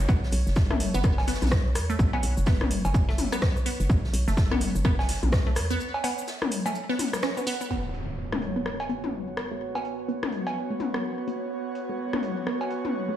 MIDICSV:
0, 0, Header, 1, 6, 480
1, 0, Start_track
1, 0, Tempo, 476190
1, 88, Time_signature, 4, 2, 24, 8
1, 13270, End_track
2, 0, Start_track
2, 0, Title_t, "Analog synth pad"
2, 0, Program_c, 0, 89
2, 0, Note_on_c, 0, 73, 82
2, 7767, Note_on_c, 0, 59, 75
2, 7769, Note_off_c, 0, 73, 0
2, 7919, Note_on_c, 0, 73, 82
2, 8146, Note_on_c, 0, 66, 73
2, 13270, Note_off_c, 0, 59, 0
2, 13270, Note_off_c, 0, 66, 0
2, 13270, Note_off_c, 0, 73, 0
2, 13270, End_track
3, 0, Start_track
3, 0, Title_t, "Synth arpeggio sound"
3, 0, Program_c, 1, 84
3, 87, Note_on_c, 1, 59, 84
3, 149, Note_off_c, 1, 59, 0
3, 711, Note_on_c, 1, 57, 79
3, 752, Note_off_c, 1, 57, 0
3, 952, Note_on_c, 1, 59, 107
3, 993, Note_off_c, 1, 59, 0
3, 1288, Note_on_c, 1, 59, 81
3, 1349, Note_off_c, 1, 59, 0
3, 1912, Note_on_c, 1, 57, 80
3, 1953, Note_off_c, 1, 57, 0
3, 2151, Note_on_c, 1, 59, 96
3, 2192, Note_off_c, 1, 59, 0
3, 2488, Note_on_c, 1, 59, 87
3, 2549, Note_off_c, 1, 59, 0
3, 3111, Note_on_c, 1, 57, 76
3, 3153, Note_off_c, 1, 57, 0
3, 3351, Note_on_c, 1, 59, 99
3, 3392, Note_off_c, 1, 59, 0
3, 3688, Note_on_c, 1, 59, 78
3, 3749, Note_off_c, 1, 59, 0
3, 4311, Note_on_c, 1, 57, 78
3, 4353, Note_off_c, 1, 57, 0
3, 4551, Note_on_c, 1, 59, 103
3, 4592, Note_off_c, 1, 59, 0
3, 4887, Note_on_c, 1, 59, 84
3, 4949, Note_off_c, 1, 59, 0
3, 5511, Note_on_c, 1, 57, 78
3, 5552, Note_off_c, 1, 57, 0
3, 5750, Note_on_c, 1, 59, 107
3, 5792, Note_off_c, 1, 59, 0
3, 6087, Note_on_c, 1, 59, 80
3, 6149, Note_off_c, 1, 59, 0
3, 6710, Note_on_c, 1, 57, 80
3, 6752, Note_off_c, 1, 57, 0
3, 6950, Note_on_c, 1, 59, 100
3, 6992, Note_off_c, 1, 59, 0
3, 7286, Note_on_c, 1, 61, 86
3, 7348, Note_off_c, 1, 61, 0
3, 7430, Note_on_c, 1, 59, 76
3, 7472, Note_off_c, 1, 59, 0
3, 7527, Note_on_c, 1, 59, 103
3, 7620, Note_off_c, 1, 59, 0
3, 7671, Note_on_c, 1, 59, 83
3, 7712, Note_off_c, 1, 59, 0
3, 7768, Note_on_c, 1, 59, 83
3, 7829, Note_off_c, 1, 59, 0
3, 8390, Note_on_c, 1, 57, 74
3, 8432, Note_off_c, 1, 57, 0
3, 8630, Note_on_c, 1, 59, 95
3, 8672, Note_off_c, 1, 59, 0
3, 8966, Note_on_c, 1, 59, 70
3, 9028, Note_off_c, 1, 59, 0
3, 9590, Note_on_c, 1, 57, 73
3, 9632, Note_off_c, 1, 57, 0
3, 9830, Note_on_c, 1, 59, 94
3, 9872, Note_off_c, 1, 59, 0
3, 10166, Note_on_c, 1, 59, 80
3, 10228, Note_off_c, 1, 59, 0
3, 10789, Note_on_c, 1, 57, 73
3, 10832, Note_off_c, 1, 57, 0
3, 11029, Note_on_c, 1, 59, 96
3, 11072, Note_off_c, 1, 59, 0
3, 11366, Note_on_c, 1, 59, 75
3, 11428, Note_off_c, 1, 59, 0
3, 11989, Note_on_c, 1, 57, 72
3, 12032, Note_off_c, 1, 57, 0
3, 12230, Note_on_c, 1, 59, 96
3, 12272, Note_off_c, 1, 59, 0
3, 12566, Note_on_c, 1, 59, 77
3, 12629, Note_off_c, 1, 59, 0
3, 13190, Note_on_c, 1, 57, 72
3, 13232, Note_off_c, 1, 57, 0
3, 13270, End_track
4, 0, Start_track
4, 0, Title_t, "FM bass"
4, 0, Program_c, 2, 39
4, 88, Note_on_c, 2, 35, 97
4, 297, Note_off_c, 2, 35, 0
4, 327, Note_on_c, 2, 35, 108
4, 448, Note_off_c, 2, 35, 0
4, 471, Note_on_c, 2, 30, 89
4, 915, Note_off_c, 2, 30, 0
4, 951, Note_on_c, 2, 30, 87
4, 1395, Note_off_c, 2, 30, 0
4, 1431, Note_on_c, 2, 35, 95
4, 1768, Note_on_c, 2, 40, 82
4, 1783, Note_off_c, 2, 35, 0
4, 1977, Note_off_c, 2, 40, 0
4, 2008, Note_on_c, 2, 35, 100
4, 2217, Note_off_c, 2, 35, 0
4, 2249, Note_on_c, 2, 35, 99
4, 2369, Note_off_c, 2, 35, 0
4, 2393, Note_on_c, 2, 30, 94
4, 2836, Note_off_c, 2, 30, 0
4, 2872, Note_on_c, 2, 30, 90
4, 3315, Note_off_c, 2, 30, 0
4, 3831, Note_on_c, 2, 30, 88
4, 3912, Note_off_c, 2, 30, 0
4, 3927, Note_on_c, 2, 35, 101
4, 4137, Note_off_c, 2, 35, 0
4, 4167, Note_on_c, 2, 35, 102
4, 4288, Note_off_c, 2, 35, 0
4, 4311, Note_on_c, 2, 30, 90
4, 4755, Note_off_c, 2, 30, 0
4, 4791, Note_on_c, 2, 30, 85
4, 5235, Note_off_c, 2, 30, 0
4, 5271, Note_on_c, 2, 35, 90
4, 5608, Note_on_c, 2, 40, 85
4, 5623, Note_off_c, 2, 35, 0
4, 5817, Note_off_c, 2, 40, 0
4, 13270, End_track
5, 0, Start_track
5, 0, Title_t, "Impact"
5, 0, Program_c, 3, 103
5, 7767, Note_on_c, 3, 60, 71
5, 9688, Note_off_c, 3, 60, 0
5, 13270, End_track
6, 0, Start_track
6, 0, Title_t, "Drums"
6, 87, Note_on_c, 9, 36, 119
6, 90, Note_on_c, 9, 82, 89
6, 188, Note_off_c, 9, 36, 0
6, 191, Note_off_c, 9, 82, 0
6, 233, Note_on_c, 9, 38, 59
6, 319, Note_on_c, 9, 82, 70
6, 328, Note_off_c, 9, 82, 0
6, 328, Note_on_c, 9, 46, 97
6, 328, Note_on_c, 9, 82, 32
6, 334, Note_off_c, 9, 38, 0
6, 429, Note_off_c, 9, 46, 0
6, 429, Note_off_c, 9, 82, 0
6, 472, Note_on_c, 9, 82, 41
6, 478, Note_on_c, 9, 38, 52
6, 562, Note_off_c, 9, 82, 0
6, 562, Note_on_c, 9, 82, 98
6, 565, Note_off_c, 9, 38, 0
6, 565, Note_on_c, 9, 38, 127
6, 568, Note_on_c, 9, 36, 105
6, 663, Note_off_c, 9, 82, 0
6, 666, Note_off_c, 9, 38, 0
6, 668, Note_off_c, 9, 36, 0
6, 712, Note_on_c, 9, 37, 64
6, 712, Note_on_c, 9, 48, 82
6, 807, Note_on_c, 9, 46, 90
6, 813, Note_off_c, 9, 37, 0
6, 813, Note_off_c, 9, 48, 0
6, 813, Note_on_c, 9, 82, 66
6, 908, Note_off_c, 9, 46, 0
6, 914, Note_off_c, 9, 82, 0
6, 952, Note_on_c, 9, 82, 48
6, 1044, Note_off_c, 9, 82, 0
6, 1044, Note_on_c, 9, 82, 86
6, 1048, Note_on_c, 9, 36, 115
6, 1049, Note_on_c, 9, 37, 59
6, 1144, Note_off_c, 9, 82, 0
6, 1148, Note_off_c, 9, 36, 0
6, 1149, Note_off_c, 9, 37, 0
6, 1189, Note_on_c, 9, 38, 52
6, 1192, Note_on_c, 9, 56, 92
6, 1284, Note_on_c, 9, 82, 74
6, 1289, Note_off_c, 9, 82, 0
6, 1289, Note_on_c, 9, 46, 87
6, 1289, Note_on_c, 9, 82, 29
6, 1290, Note_off_c, 9, 38, 0
6, 1290, Note_on_c, 9, 38, 96
6, 1293, Note_off_c, 9, 56, 0
6, 1356, Note_off_c, 9, 38, 0
6, 1356, Note_on_c, 9, 38, 83
6, 1359, Note_off_c, 9, 82, 0
6, 1359, Note_on_c, 9, 82, 70
6, 1389, Note_off_c, 9, 46, 0
6, 1429, Note_off_c, 9, 82, 0
6, 1429, Note_on_c, 9, 82, 74
6, 1430, Note_off_c, 9, 38, 0
6, 1430, Note_on_c, 9, 38, 95
6, 1432, Note_on_c, 9, 46, 35
6, 1432, Note_on_c, 9, 48, 56
6, 1479, Note_off_c, 9, 38, 0
6, 1479, Note_off_c, 9, 82, 0
6, 1479, Note_on_c, 9, 38, 85
6, 1479, Note_on_c, 9, 82, 65
6, 1525, Note_off_c, 9, 38, 0
6, 1525, Note_on_c, 9, 38, 116
6, 1528, Note_on_c, 9, 36, 111
6, 1528, Note_on_c, 9, 37, 105
6, 1529, Note_off_c, 9, 82, 0
6, 1529, Note_on_c, 9, 82, 90
6, 1533, Note_off_c, 9, 46, 0
6, 1533, Note_off_c, 9, 48, 0
6, 1625, Note_off_c, 9, 38, 0
6, 1628, Note_off_c, 9, 36, 0
6, 1629, Note_off_c, 9, 37, 0
6, 1630, Note_off_c, 9, 82, 0
6, 1766, Note_on_c, 9, 82, 70
6, 1768, Note_off_c, 9, 82, 0
6, 1768, Note_on_c, 9, 37, 65
6, 1768, Note_on_c, 9, 46, 96
6, 1768, Note_on_c, 9, 82, 41
6, 1869, Note_off_c, 9, 37, 0
6, 1869, Note_off_c, 9, 46, 0
6, 1869, Note_off_c, 9, 82, 0
6, 1913, Note_on_c, 9, 82, 41
6, 1914, Note_on_c, 9, 42, 43
6, 2008, Note_on_c, 9, 36, 111
6, 2009, Note_off_c, 9, 82, 0
6, 2009, Note_on_c, 9, 82, 86
6, 2015, Note_off_c, 9, 42, 0
6, 2108, Note_off_c, 9, 36, 0
6, 2110, Note_off_c, 9, 82, 0
6, 2152, Note_on_c, 9, 56, 93
6, 2246, Note_on_c, 9, 82, 61
6, 2248, Note_off_c, 9, 82, 0
6, 2248, Note_on_c, 9, 46, 92
6, 2248, Note_on_c, 9, 82, 31
6, 2252, Note_off_c, 9, 56, 0
6, 2349, Note_off_c, 9, 46, 0
6, 2349, Note_off_c, 9, 82, 0
6, 2392, Note_on_c, 9, 82, 42
6, 2481, Note_on_c, 9, 38, 126
6, 2482, Note_off_c, 9, 82, 0
6, 2482, Note_on_c, 9, 82, 89
6, 2488, Note_on_c, 9, 36, 106
6, 2582, Note_off_c, 9, 38, 0
6, 2583, Note_off_c, 9, 82, 0
6, 2588, Note_off_c, 9, 36, 0
6, 2631, Note_on_c, 9, 37, 66
6, 2631, Note_on_c, 9, 48, 78
6, 2729, Note_on_c, 9, 46, 95
6, 2729, Note_on_c, 9, 82, 30
6, 2730, Note_off_c, 9, 82, 0
6, 2730, Note_on_c, 9, 82, 72
6, 2732, Note_off_c, 9, 37, 0
6, 2732, Note_off_c, 9, 48, 0
6, 2830, Note_off_c, 9, 46, 0
6, 2830, Note_off_c, 9, 82, 0
6, 2872, Note_on_c, 9, 56, 94
6, 2872, Note_on_c, 9, 82, 50
6, 2968, Note_on_c, 9, 36, 115
6, 2969, Note_off_c, 9, 82, 0
6, 2969, Note_on_c, 9, 82, 93
6, 2972, Note_off_c, 9, 56, 0
6, 3068, Note_off_c, 9, 36, 0
6, 3070, Note_off_c, 9, 82, 0
6, 3116, Note_on_c, 9, 38, 49
6, 3208, Note_on_c, 9, 46, 84
6, 3208, Note_on_c, 9, 48, 55
6, 3208, Note_on_c, 9, 82, 30
6, 3211, Note_off_c, 9, 82, 0
6, 3211, Note_on_c, 9, 82, 78
6, 3217, Note_off_c, 9, 38, 0
6, 3309, Note_off_c, 9, 46, 0
6, 3309, Note_off_c, 9, 48, 0
6, 3312, Note_off_c, 9, 82, 0
6, 3352, Note_on_c, 9, 37, 62
6, 3353, Note_on_c, 9, 46, 34
6, 3353, Note_on_c, 9, 82, 50
6, 3446, Note_off_c, 9, 82, 0
6, 3446, Note_on_c, 9, 38, 109
6, 3446, Note_on_c, 9, 82, 81
6, 3447, Note_on_c, 9, 36, 103
6, 3449, Note_off_c, 9, 37, 0
6, 3449, Note_on_c, 9, 37, 104
6, 3454, Note_off_c, 9, 46, 0
6, 3547, Note_off_c, 9, 38, 0
6, 3547, Note_off_c, 9, 82, 0
6, 3548, Note_off_c, 9, 36, 0
6, 3549, Note_off_c, 9, 37, 0
6, 3593, Note_on_c, 9, 82, 31
6, 3689, Note_on_c, 9, 46, 92
6, 3690, Note_off_c, 9, 82, 0
6, 3690, Note_on_c, 9, 82, 66
6, 3790, Note_off_c, 9, 46, 0
6, 3791, Note_off_c, 9, 82, 0
6, 3831, Note_on_c, 9, 42, 42
6, 3833, Note_on_c, 9, 82, 42
6, 3927, Note_on_c, 9, 36, 112
6, 3932, Note_off_c, 9, 42, 0
6, 3932, Note_off_c, 9, 82, 0
6, 3932, Note_on_c, 9, 82, 88
6, 4028, Note_off_c, 9, 36, 0
6, 4033, Note_off_c, 9, 82, 0
6, 4074, Note_on_c, 9, 38, 50
6, 4169, Note_on_c, 9, 46, 93
6, 4169, Note_on_c, 9, 82, 33
6, 4170, Note_off_c, 9, 82, 0
6, 4170, Note_on_c, 9, 82, 69
6, 4175, Note_off_c, 9, 38, 0
6, 4270, Note_off_c, 9, 46, 0
6, 4271, Note_off_c, 9, 82, 0
6, 4313, Note_on_c, 9, 82, 46
6, 4316, Note_on_c, 9, 38, 48
6, 4407, Note_on_c, 9, 36, 104
6, 4408, Note_off_c, 9, 38, 0
6, 4408, Note_off_c, 9, 82, 0
6, 4408, Note_on_c, 9, 38, 120
6, 4408, Note_on_c, 9, 82, 92
6, 4508, Note_off_c, 9, 36, 0
6, 4509, Note_off_c, 9, 38, 0
6, 4509, Note_off_c, 9, 82, 0
6, 4552, Note_on_c, 9, 37, 68
6, 4552, Note_on_c, 9, 48, 73
6, 4644, Note_on_c, 9, 82, 75
6, 4649, Note_on_c, 9, 46, 91
6, 4652, Note_off_c, 9, 37, 0
6, 4652, Note_off_c, 9, 48, 0
6, 4745, Note_off_c, 9, 82, 0
6, 4749, Note_off_c, 9, 46, 0
6, 4792, Note_on_c, 9, 82, 53
6, 4887, Note_off_c, 9, 82, 0
6, 4887, Note_on_c, 9, 36, 117
6, 4887, Note_on_c, 9, 37, 62
6, 4887, Note_on_c, 9, 82, 84
6, 4988, Note_off_c, 9, 36, 0
6, 4988, Note_off_c, 9, 37, 0
6, 4988, Note_off_c, 9, 82, 0
6, 5031, Note_on_c, 9, 56, 93
6, 5034, Note_on_c, 9, 38, 55
6, 5128, Note_on_c, 9, 46, 88
6, 5128, Note_on_c, 9, 82, 75
6, 5132, Note_off_c, 9, 38, 0
6, 5132, Note_off_c, 9, 56, 0
6, 5132, Note_on_c, 9, 38, 94
6, 5229, Note_off_c, 9, 46, 0
6, 5229, Note_off_c, 9, 82, 0
6, 5233, Note_off_c, 9, 38, 0
6, 5270, Note_on_c, 9, 48, 53
6, 5271, Note_on_c, 9, 46, 36
6, 5367, Note_on_c, 9, 36, 106
6, 5367, Note_on_c, 9, 82, 91
6, 5368, Note_on_c, 9, 37, 108
6, 5370, Note_on_c, 9, 38, 115
6, 5371, Note_off_c, 9, 48, 0
6, 5372, Note_off_c, 9, 46, 0
6, 5468, Note_off_c, 9, 36, 0
6, 5468, Note_off_c, 9, 82, 0
6, 5469, Note_off_c, 9, 37, 0
6, 5471, Note_off_c, 9, 38, 0
6, 5599, Note_on_c, 9, 82, 66
6, 5607, Note_on_c, 9, 37, 68
6, 5608, Note_off_c, 9, 82, 0
6, 5608, Note_on_c, 9, 46, 93
6, 5608, Note_on_c, 9, 82, 44
6, 5708, Note_off_c, 9, 37, 0
6, 5709, Note_off_c, 9, 46, 0
6, 5709, Note_off_c, 9, 82, 0
6, 5747, Note_on_c, 9, 42, 46
6, 5752, Note_on_c, 9, 82, 42
6, 5847, Note_off_c, 9, 42, 0
6, 5849, Note_off_c, 9, 82, 0
6, 5849, Note_on_c, 9, 82, 86
6, 5950, Note_off_c, 9, 82, 0
6, 5991, Note_on_c, 9, 56, 98
6, 6087, Note_off_c, 9, 56, 0
6, 6087, Note_on_c, 9, 56, 86
6, 6089, Note_on_c, 9, 46, 93
6, 6089, Note_on_c, 9, 82, 34
6, 6090, Note_off_c, 9, 82, 0
6, 6090, Note_on_c, 9, 82, 64
6, 6188, Note_off_c, 9, 56, 0
6, 6190, Note_off_c, 9, 46, 0
6, 6191, Note_off_c, 9, 82, 0
6, 6232, Note_on_c, 9, 82, 46
6, 6325, Note_on_c, 9, 38, 112
6, 6326, Note_off_c, 9, 82, 0
6, 6326, Note_on_c, 9, 82, 87
6, 6329, Note_on_c, 9, 46, 38
6, 6426, Note_off_c, 9, 38, 0
6, 6427, Note_off_c, 9, 82, 0
6, 6430, Note_off_c, 9, 46, 0
6, 6470, Note_on_c, 9, 37, 69
6, 6470, Note_on_c, 9, 48, 76
6, 6565, Note_on_c, 9, 82, 70
6, 6569, Note_off_c, 9, 82, 0
6, 6569, Note_on_c, 9, 46, 93
6, 6569, Note_on_c, 9, 82, 31
6, 6571, Note_off_c, 9, 37, 0
6, 6571, Note_off_c, 9, 48, 0
6, 6670, Note_off_c, 9, 46, 0
6, 6670, Note_off_c, 9, 82, 0
6, 6710, Note_on_c, 9, 56, 96
6, 6713, Note_on_c, 9, 82, 55
6, 6804, Note_off_c, 9, 82, 0
6, 6804, Note_on_c, 9, 82, 85
6, 6811, Note_off_c, 9, 56, 0
6, 6905, Note_off_c, 9, 82, 0
6, 6948, Note_on_c, 9, 38, 46
6, 7047, Note_on_c, 9, 48, 55
6, 7049, Note_off_c, 9, 38, 0
6, 7049, Note_on_c, 9, 46, 89
6, 7049, Note_on_c, 9, 82, 34
6, 7053, Note_off_c, 9, 82, 0
6, 7053, Note_on_c, 9, 82, 85
6, 7148, Note_off_c, 9, 48, 0
6, 7150, Note_off_c, 9, 46, 0
6, 7153, Note_off_c, 9, 82, 0
6, 7191, Note_on_c, 9, 37, 65
6, 7193, Note_on_c, 9, 46, 35
6, 7193, Note_on_c, 9, 82, 52
6, 7195, Note_on_c, 9, 38, 47
6, 7282, Note_off_c, 9, 82, 0
6, 7282, Note_on_c, 9, 82, 79
6, 7286, Note_off_c, 9, 38, 0
6, 7286, Note_on_c, 9, 38, 117
6, 7288, Note_off_c, 9, 37, 0
6, 7288, Note_on_c, 9, 37, 114
6, 7294, Note_off_c, 9, 46, 0
6, 7383, Note_off_c, 9, 82, 0
6, 7386, Note_off_c, 9, 38, 0
6, 7389, Note_off_c, 9, 37, 0
6, 7432, Note_on_c, 9, 82, 35
6, 7529, Note_on_c, 9, 46, 92
6, 7533, Note_off_c, 9, 82, 0
6, 7533, Note_on_c, 9, 82, 71
6, 7630, Note_off_c, 9, 46, 0
6, 7634, Note_off_c, 9, 82, 0
6, 7669, Note_on_c, 9, 42, 43
6, 7672, Note_on_c, 9, 82, 44
6, 7770, Note_off_c, 9, 42, 0
6, 7773, Note_off_c, 9, 82, 0
6, 8009, Note_on_c, 9, 46, 85
6, 8110, Note_off_c, 9, 46, 0
6, 8392, Note_on_c, 9, 37, 63
6, 8392, Note_on_c, 9, 48, 77
6, 8488, Note_on_c, 9, 46, 89
6, 8492, Note_off_c, 9, 37, 0
6, 8492, Note_off_c, 9, 48, 0
6, 8588, Note_off_c, 9, 46, 0
6, 8727, Note_on_c, 9, 37, 60
6, 8828, Note_off_c, 9, 37, 0
6, 8870, Note_on_c, 9, 56, 90
6, 8968, Note_on_c, 9, 46, 79
6, 8971, Note_off_c, 9, 56, 0
6, 9069, Note_off_c, 9, 46, 0
6, 9111, Note_on_c, 9, 48, 53
6, 9112, Note_on_c, 9, 46, 33
6, 9211, Note_off_c, 9, 48, 0
6, 9212, Note_off_c, 9, 46, 0
6, 9447, Note_on_c, 9, 37, 64
6, 9448, Note_on_c, 9, 46, 88
6, 9548, Note_off_c, 9, 37, 0
6, 9549, Note_off_c, 9, 46, 0
6, 9831, Note_on_c, 9, 56, 96
6, 9928, Note_on_c, 9, 46, 86
6, 9932, Note_off_c, 9, 56, 0
6, 10029, Note_off_c, 9, 46, 0
6, 10168, Note_on_c, 9, 46, 38
6, 10269, Note_off_c, 9, 46, 0
6, 10311, Note_on_c, 9, 37, 65
6, 10311, Note_on_c, 9, 48, 76
6, 10407, Note_on_c, 9, 46, 90
6, 10412, Note_off_c, 9, 37, 0
6, 10412, Note_off_c, 9, 48, 0
6, 10508, Note_off_c, 9, 46, 0
6, 10551, Note_on_c, 9, 56, 96
6, 10652, Note_off_c, 9, 56, 0
6, 10887, Note_on_c, 9, 46, 83
6, 10887, Note_on_c, 9, 48, 55
6, 10987, Note_off_c, 9, 46, 0
6, 10988, Note_off_c, 9, 48, 0
6, 11030, Note_on_c, 9, 37, 61
6, 11031, Note_on_c, 9, 46, 35
6, 11131, Note_off_c, 9, 37, 0
6, 11132, Note_off_c, 9, 46, 0
6, 11367, Note_on_c, 9, 46, 89
6, 11468, Note_off_c, 9, 46, 0
6, 11847, Note_on_c, 9, 46, 94
6, 11947, Note_off_c, 9, 46, 0
6, 12230, Note_on_c, 9, 37, 60
6, 12230, Note_on_c, 9, 48, 77
6, 12327, Note_on_c, 9, 46, 94
6, 12331, Note_off_c, 9, 37, 0
6, 12331, Note_off_c, 9, 48, 0
6, 12428, Note_off_c, 9, 46, 0
6, 12567, Note_on_c, 9, 37, 58
6, 12668, Note_off_c, 9, 37, 0
6, 12710, Note_on_c, 9, 56, 84
6, 12808, Note_on_c, 9, 46, 89
6, 12811, Note_off_c, 9, 56, 0
6, 12908, Note_off_c, 9, 46, 0
6, 12951, Note_on_c, 9, 46, 35
6, 12951, Note_on_c, 9, 48, 56
6, 13052, Note_off_c, 9, 46, 0
6, 13052, Note_off_c, 9, 48, 0
6, 13270, End_track
0, 0, End_of_file